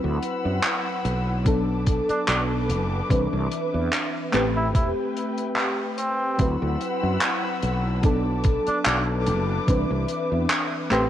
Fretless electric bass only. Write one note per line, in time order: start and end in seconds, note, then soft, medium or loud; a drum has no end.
0.04 0.17 D2 loud
0.45 0.58 F#2 medium
1.05 1.99 B1 medium
2.10 muted fretless electric bass stroke soft
2.28 2.71 B1 medium
2.69 3.00 F#1 loud
3.10 3.27 C2 medium
3.33 3.46 C2 loud
3.74 3.87 E2 medium
4.34 4.75 A1 medium
4.75 4.91 E1 medium
6.39 6.55 D2 loud
6.62 6.75 D2 loud
7.03 7.16 F#2 medium
7.63 8.57 B1 medium
8.67 muted fretless electric bass stroke soft
8.86 9.29 B1 medium
9.27 9.58 F#1 loud
9.68 9.84 C2 medium
9.90 10.04 C2 loud
10.32 10.45 E2 medium
10.91 11.10 A1 medium